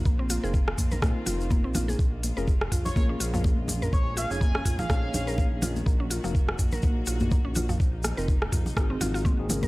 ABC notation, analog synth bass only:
X:1
M:4/4
L:1/16
Q:"Swing 16ths" 1/4=124
K:Bbm
V:1 name="Analog synth bass" clef=bass
B,,,3 F,,,3 B,,,2 B,, z F,,,3 B,,,3 | B,,,3 F,,,3 B,,,2 B,,,2 B,,,3 B,,,3 | B,,,3 F,,,3 B,,,2 B,,,2 B,,,3 B,,,3 | B,,,3 F,,,3 B,,,2 B,,,2 B,,,3 B,,,3 |
B,,,3 F,,,3 B,,,2 A,,,2 A,,,3 A,,,3 |]